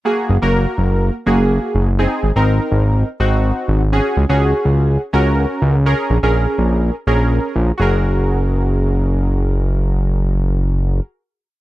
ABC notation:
X:1
M:4/4
L:1/16
Q:1/4=124
K:F#
V:1 name="Synth keys"
[A,FG]3 [A,FA]6 z [A,FG]4- [A,FG] z | [^B,DG]3 [B,DA]6 z [B,DF]4- [B,DF] z | [CFG]3 [CFG]6 z [CFA]4- [CFA] z | [CGA]3 [CGA]6 z [CGA]4- [CGA] z |
[FGA]16- | [FGA]16 |]
V:2 name="Analog synth bass" clef=bass
z2 F,,, F,,,3 F,,,4 F,,,4 F,,,2- | F,,,2 G,,, G,,,3 G,,,4 G,,,4 G,,,2- | G,,,2 C,, C,,3 C,,4 C,,4 C,,2- | C,,2 A,,, A,,,3 A,,,4 A,,,4 A,,,2 |
F,,,16- | F,,,16 |]